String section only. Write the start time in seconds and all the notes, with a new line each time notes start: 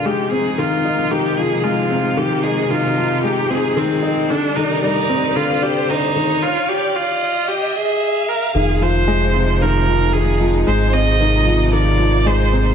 0.05 C3 F3 G#3 D#4
2.17 D#4
4.28 G3 D5
8.55 C3 F3 G#3 D#4
10.66 C3 F3